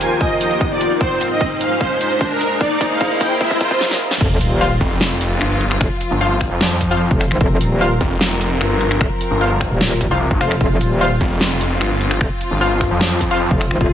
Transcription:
0.00 0.99 D#2 medium
0.00 0.99 D#3 medium
0.00 1.65 D#4 medium
0.00 0.98 G4 medium
0.00 0.99 A#4 medium
0.00 1.65 A#4 medium
0.00 0.14 G#5 medium
0.00 closed hi-hat medium
0.00 riser medium
0.13 1.65 F5 medium
0.21 0.34 D#5 medium
0.21 kick medium
0.41 0.61 D#5 loud
0.41 closed hi-hat medium
0.51 closed hi-hat soft
0.61 kick loud
0.71 0.91 D5 loud
0.81 closed hi-hat medium
1.01 2.59 G#2 medium
1.01 2.59 G#3 medium
1.01 2.59 D#4 medium
1.01 2.93 G#4 loud
1.01 1.21 C5 loud
1.01 2.59 C5 medium
1.01 kick loud
1.08 2.61 D#5 loud
1.21 closed hi-hat medium
1.31 1.51 D#5 medium
1.41 kick loud
1.61 1.74 F5 medium
1.61 closed hi-hat medium
1.81 1.94 C5 medium
1.81 kick loud
2.01 2.21 C5 loud
2.01 closed hi-hat medium
2.11 closed hi-hat soft
2.21 kick loud
2.31 2.51 A#4 medium
2.41 closed hi-hat medium
2.61 3.40 A#2 medium
2.61 4.19 A#3 medium
2.61 3.40 D4 medium
2.61 4.19 C5 medium
2.61 2.81 D5 loud
2.61 kick loud
2.81 kick loud
2.81 closed hi-hat medium
2.91 3.11 F5 loud
3.01 kick loud
3.21 3.34 G5 medium
3.21 kick loud
3.21 closed hi-hat medium
3.41 4.20 C3 medium
3.41 4.20 E4 medium
3.41 3.54 E5 medium
3.41 kick loud
3.51 kick medium
3.61 3.81 C5 loud
3.61 kick loud
3.61 closed hi-hat medium
3.71 kick loud
3.71 closed hi-hat soft
3.81 snare medium
3.91 snare medium
4.11 snare medium
4.21 4.39 F1 loud
4.21 13.93 F3 medium
4.21 13.93 C4 medium
4.21 7.40 F4 medium
4.21 13.93 F4 medium
4.21 kick loud
4.21 crash loud
4.21 sub drop medium
4.41 4.79 D#1 loud
4.41 closed hi-hat medium
4.61 4.68 F4 loud
4.61 4.68 C5 medium
4.61 4.68 F5 loud
4.81 4.99 F1 loud
4.81 kick medium
4.81 open hi-hat medium
5.01 5.39 F1 medium
5.01 snare loud
5.11 closed hi-hat soft
5.21 closed hi-hat medium
5.41 5.79 G1 loud
5.41 finger snap soft
5.61 open hi-hat loud
5.71 finger snap soft
5.81 5.89 F1 loud
5.81 finger snap medium
5.81 kick loud
6.01 closed hi-hat medium
6.11 6.49 G1 loud
6.21 6.89 F4 medium
6.21 6.89 C5 medium
6.21 6.89 F5 loud
6.41 finger snap medium
6.41 kick medium
6.41 open hi-hat medium
6.51 7.09 F2 loud
6.61 snare loud
6.71 closed hi-hat soft
6.81 kick medium
6.81 closed hi-hat medium
6.91 7.02 F4 medium
6.91 7.02 C5 medium
6.91 7.02 F5 loud
7.11 7.29 F1 medium
7.11 kick loud
7.21 finger snap medium
7.21 open hi-hat medium
7.31 7.39 G#1 loud
7.31 finger snap soft
7.41 7.59 F1 loud
7.41 10.60 A#4 medium
7.41 kick loud
7.61 7.99 D#1 loud
7.61 closed hi-hat medium
7.81 7.88 F4 loud
7.81 7.88 C5 medium
7.81 7.88 F5 loud
8.01 8.19 F1 loud
8.01 kick medium
8.01 open hi-hat medium
8.21 8.59 F1 loud
8.21 snare loud
8.31 closed hi-hat soft
8.41 closed hi-hat medium
8.61 8.99 G1 loud
8.61 finger snap medium
8.81 open hi-hat medium
8.91 finger snap soft
9.01 9.09 F1 loud
9.01 finger snap medium
9.01 kick loud
9.21 closed hi-hat medium
9.31 9.69 G1 loud
9.41 10.09 F4 medium
9.41 10.09 C5 medium
9.41 10.09 F5 loud
9.61 finger snap medium
9.61 kick medium
9.61 open hi-hat medium
9.71 10.09 D#1 loud
9.81 snare loud
9.91 closed hi-hat soft
10.01 kick medium
10.01 closed hi-hat medium
10.11 10.29 C2 medium
10.11 10.18 F4 medium
10.11 10.18 C5 medium
10.11 10.18 F5 medium
10.31 10.39 G1 loud
10.31 kick loud
10.41 10.59 F1 medium
10.41 10.52 F4 loud
10.41 10.52 C5 medium
10.41 10.52 F5 loud
10.41 finger snap medium
10.41 open hi-hat medium
10.51 finger snap medium
10.61 10.79 F1 loud
10.61 13.80 F4 medium
10.61 kick loud
10.81 11.19 D#1 loud
10.81 closed hi-hat medium
11.01 11.08 F4 loud
11.01 11.08 C5 medium
11.01 11.08 F5 loud
11.21 11.39 F1 loud
11.21 kick medium
11.21 open hi-hat medium
11.41 11.79 F1 loud
11.41 snare loud
11.51 closed hi-hat soft
11.61 closed hi-hat medium
11.81 12.19 G1 loud
11.81 finger snap medium
12.01 open hi-hat medium
12.11 finger snap medium
12.21 12.29 F1 medium
12.21 finger snap medium
12.21 kick loud
12.41 closed hi-hat medium
12.51 12.89 G1 loud
12.61 13.29 F4 medium
12.61 13.29 C5 medium
12.61 13.29 F5 loud
12.81 finger snap medium
12.81 kick medium
12.81 open hi-hat medium
12.91 13.49 F2 loud
13.01 snare loud
13.11 closed hi-hat soft
13.21 kick medium
13.21 closed hi-hat medium
13.31 13.42 F4 medium
13.31 13.42 C5 medium
13.31 13.42 F5 loud
13.51 13.69 F1 loud
13.51 kick loud
13.61 finger snap medium
13.61 open hi-hat medium
13.71 13.79 G#1 loud
13.71 finger snap medium
13.81 13.93 F1 loud
13.81 13.93 G#4 medium
13.81 kick loud

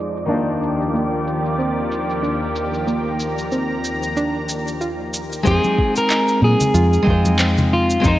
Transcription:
0.00 0.26 F2 medium
0.00 0.26 F3 medium
0.00 0.25 G#3 medium
0.00 0.26 G#3 medium
0.00 0.25 C4 medium
0.00 0.26 D#4 medium
0.00 0.27 F4 medium
0.00 0.28 C5 medium
0.00 5.48 D5 medium
0.00 5.48 D6 medium
0.17 shaker soft
0.26 5.41 D#3 medium
0.26 5.41 A#3 medium
0.26 5.42 D4 medium
0.26 0.49 D4 medium
0.30 5.42 D#2 medium
0.30 5.42 D#3 medium
0.30 5.42 F3 medium
0.30 5.42 A#3 medium
0.30 5.43 D#4 medium
0.30 5.44 F4 medium
0.30 5.42 G4 medium
0.30 5.44 C5 medium
0.30 2.86 D5 medium
0.30 shaker soft
0.63 shaker medium
0.82 shaker soft
0.94 1.25 A#3 medium
0.94 shaker soft
1.27 shaker medium
1.45 shaker soft
1.59 1.88 C4 medium
1.59 shaker soft
1.92 shaker medium
2.10 shaker soft
2.23 2.43 D4 medium
2.23 shaker soft
2.55 shaker medium
2.74 shaker soft
2.87 3.18 A#3 medium
2.87 5.43 A#5 medium
2.87 shaker soft
3.20 shaker medium
3.38 shaker soft
3.52 3.82 C4 medium
3.52 shaker soft
3.85 shaker medium
4.03 shaker soft
4.17 4.36 D4 loud
4.17 shaker soft
4.49 shaker medium
4.67 shaker soft
4.81 5.01 F4 medium
4.81 shaker soft
5.13 shaker medium
5.32 shaker soft
5.43 5.58 F2 medium
5.43 7.02 G#3 medium
5.43 7.03 C4 medium
5.43 5.76 C4 medium
5.43 7.04 D#4 medium
5.43 kick loud
5.43 shaker medium
5.47 7.05 F4 medium
5.47 5.97 G#4 loud
5.47 7.06 C5 loud
5.64 high conga medium
5.64 shaker soft
5.78 kick loud
5.96 6.40 A#4 loud
5.96 shaker medium
6.10 6.40 D#4 medium
6.10 clap medium
6.10 shaker medium
6.28 shaker soft
6.42 6.54 A#2 medium
6.42 7.36 G#4 loud
6.42 high conga medium
6.61 low conga medium
6.61 shaker medium
6.74 6.97 F2 loud
6.74 6.94 F4 loud
6.74 shaker medium
6.94 shaker soft
7.03 7.98 G#3 medium
7.03 7.99 C4 medium
7.03 8.00 D#4 medium
7.07 7.96 F2 medium
7.07 8.01 F4 medium
7.07 8.02 C5 loud
7.07 kick loud
7.25 high conga medium
7.25 shaker medium
7.39 7.70 C4 medium
7.39 clap loud
7.39 shaker medium
7.58 low conga loud
7.58 shaker soft
7.73 8.06 F4 medium
7.90 shaker medium
8.00 8.19 G#3 medium
8.00 8.19 C4 medium
8.00 8.19 D#4 medium
8.04 8.16 F2 medium
8.04 8.19 D#4 medium
8.04 8.19 F4 medium
8.04 8.19 C5 loud
8.04 kick loud
8.04 shaker medium

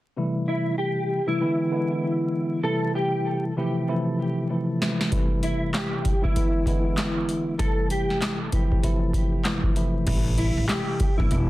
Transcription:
0.16 1.18 C3 medium
0.16 1.18 E3 medium
0.16 1.18 G3 medium
0.16 1.18 A3 medium
0.16 1.19 E4 loud
0.48 0.76 E4 medium
0.78 1.25 G4 medium
1.26 1.39 C3 medium
1.26 1.39 E3 medium
1.26 1.40 G3 medium
1.26 1.40 A3 medium
1.26 1.40 E4 medium
1.26 2.60 E4 medium
1.40 1.69 D3 medium
1.40 1.69 E3 medium
1.40 1.70 G#3 medium
1.40 1.70 B3 medium
1.40 1.70 E4 medium
1.71 2.58 D3 medium
1.71 2.58 E3 medium
1.71 2.59 G#3 medium
1.71 2.59 B3 medium
1.71 2.59 E4 medium
2.63 3.51 C3 medium
2.63 3.51 E3 medium
2.63 3.51 G3 medium
2.63 3.51 A3 medium
2.63 3.51 E4 loud
2.63 2.92 A4 loud
2.95 3.42 G4 medium
3.57 3.86 C3 medium
3.57 3.86 E3 medium
3.57 3.86 F3 medium
3.57 3.86 A3 medium
3.57 3.87 E4 loud
3.88 4.46 C3 medium
3.88 4.46 E3 medium
3.88 4.46 F3 medium
3.88 4.47 A3 medium
3.88 4.47 E4 loud
4.49 4.79 C3 medium
4.49 4.79 E3 medium
4.49 4.79 F3 medium
4.49 4.79 A3 medium
4.49 4.79 E4 medium
4.80 5.10 C3 medium
4.80 5.10 E3 medium
4.80 5.10 F3 medium
4.80 5.10 A3 medium
4.80 5.10 E4 medium
4.80 snare loud
5.01 snare medium
5.11 6.13 C3 medium
5.11 6.13 E3 medium
5.11 6.13 G3 medium
5.11 6.13 A3 medium
5.11 6.13 E4 loud
5.11 kick loud
5.11 closed hi-hat loud
5.43 5.71 E4 medium
5.43 closed hi-hat medium
5.73 6.20 G4 medium
5.73 snare loud
5.73 clap medium
5.73 closed hi-hat medium
6.05 kick medium
6.05 closed hi-hat medium
6.21 6.34 C3 medium
6.21 6.35 E3 medium
6.21 6.35 G3 medium
6.21 6.35 A3 medium
6.21 6.35 E4 loud
6.21 7.55 E4 medium
6.21 kick medium
6.35 6.64 D3 medium
6.35 6.65 E3 medium
6.35 6.65 G#3 medium
6.35 6.65 B3 medium
6.35 6.65 E4 medium
6.35 kick loud
6.35 closed hi-hat medium
6.66 7.53 D3 medium
6.66 7.53 E3 medium
6.66 7.54 G#3 medium
6.66 7.54 B3 medium
6.66 7.54 E4 loud
6.66 kick medium
6.66 closed hi-hat medium
6.98 snare loud
6.98 clap medium
6.98 closed hi-hat medium
7.29 closed hi-hat medium
7.58 8.46 C3 medium
7.58 8.46 E3 medium
7.58 8.46 G3 medium
7.58 8.46 A3 medium
7.58 8.46 E4 loud
7.58 7.87 A4 loud
7.58 kick loud
7.58 closed hi-hat loud
7.90 8.37 G4 medium
7.90 closed hi-hat medium
8.10 snare soft
8.22 snare loud
8.22 clap loud
8.22 closed hi-hat medium
8.52 8.81 C3 medium
8.52 8.81 E3 medium
8.52 8.81 F3 medium
8.52 8.81 A3 medium
8.52 8.82 E4 loud
8.52 kick medium
8.52 closed hi-hat medium
8.72 kick medium
8.83 9.41 C3 medium
8.83 9.41 E3 medium
8.83 9.41 F3 medium
8.83 9.41 A3 medium
8.83 9.42 E4 loud
8.83 kick medium
8.83 closed hi-hat medium
9.13 kick medium
9.13 closed hi-hat medium
9.44 9.73 C3 medium
9.44 9.74 E3 medium
9.44 9.74 F3 medium
9.44 9.74 A3 medium
9.44 9.74 E4 medium
9.44 snare loud
9.44 clap medium
9.44 closed hi-hat medium
9.63 kick medium
9.75 10.05 C3 medium
9.75 10.05 E3 medium
9.75 10.05 F3 medium
9.75 10.05 A3 medium
9.75 10.05 E4 medium
9.75 closed hi-hat medium
10.06 10.51 A1 loud
10.06 11.08 C3 medium
10.06 11.08 E3 medium
10.06 11.08 G3 medium
10.06 11.08 A3 medium
10.06 11.08 E4 loud
10.06 kick loud
10.06 closed hi-hat loud
10.06 crash medium
10.38 10.66 E4 medium
10.38 closed hi-hat medium
10.57 10.67 A1 medium
10.68 11.15 G4 medium
10.68 snare loud
10.68 clap loud
10.68 closed hi-hat medium
11.00 kick medium
11.00 closed hi-hat medium
11.16 11.30 G1 medium
11.16 11.29 C3 medium
11.16 11.29 E3 medium
11.16 11.30 G3 medium
11.16 11.30 A3 medium
11.16 11.50 E4 medium
11.16 11.30 E4 loud
11.16 kick loud
11.30 11.50 E1 medium
11.30 11.50 D3 medium
11.30 11.50 E3 medium
11.30 11.50 G#3 medium
11.30 11.50 B3 medium
11.30 11.50 E4 medium
11.30 kick loud
11.30 closed hi-hat medium

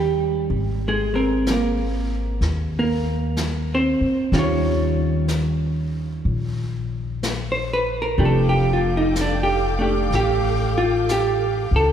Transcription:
0.00 0.46 D#2 medium
0.00 0.50 D#3 soft
0.00 0.81 G3 soft
0.00 0.50 C#4 soft
0.00 0.81 G4 soft
0.00 0.17 A#4 medium
0.50 2.37 G#1 medium
0.50 brush sweep soft
0.88 1.13 G#3 soft
0.88 1.45 G#4 soft
1.14 4.32 G#3 soft
1.14 3.73 C4 soft
1.14 1.49 A#4 soft
1.47 brush sweep soft
1.47 snare soft
1.47 hi-hat pedal soft
1.51 2.78 A#3 soft
1.51 2.78 A#4 medium
2.41 3.97 D#2 medium
2.41 brush sweep soft
2.41 snare soft
2.79 3.67 A#3 soft
2.79 3.67 A#4 soft
3.37 brush sweep soft
3.37 snare soft
3.37 hi-hat pedal soft
3.74 4.31 C4 soft
3.74 4.31 C5 soft
4.01 muted upright bass stroke soft
4.32 6.20 D#2 medium
4.32 8.18 D#3 soft
4.32 8.18 G3 soft
4.32 4.37 C#4 soft
4.32 8.19 F4 soft
4.32 brush sweep soft
4.32 snare soft
4.38 5.92 C#4 soft
4.38 5.92 C#5 medium
5.28 brush sweep soft
5.28 snare soft
5.28 hi-hat pedal soft
6.25 8.15 A#1 medium
6.25 brush sweep soft
7.23 brush sweep soft
7.23 snare soft
7.23 hi-hat pedal soft
7.52 7.73 C5 medium
7.73 7.95 B4 medium
8.02 8.18 A#4 medium
8.18 10.07 F1 medium
8.18 11.92 F3 soft
8.18 9.78 A3 soft
8.18 9.20 D4 soft
8.18 8.48 G4 soft
8.18 11.92 A4 medium
8.18 11.92 F5 soft
8.18 11.92 G5 medium
8.18 11.92 D6 medium
8.18 brush sweep soft
8.25 8.49 A4 medium
8.49 8.82 G4 medium
8.73 8.94 F4 soft
8.97 9.14 D#4 medium
9.16 brush sweep soft
9.16 snare soft
9.16 hi-hat pedal soft
9.21 9.50 D4 soft
9.43 9.64 G4 medium
9.79 11.92 A3 soft
9.79 11.92 D4 soft
9.79 10.14 G4 soft
10.11 11.69 A1 medium
10.11 brush sweep soft
10.11 snare soft
10.15 10.77 G4 medium
10.78 11.08 F4 medium
11.09 11.73 G4 medium
11.09 brush sweep soft
11.09 snare soft
11.09 hi-hat pedal soft
11.71 11.92 C#2 medium
11.76 11.92 A4 medium

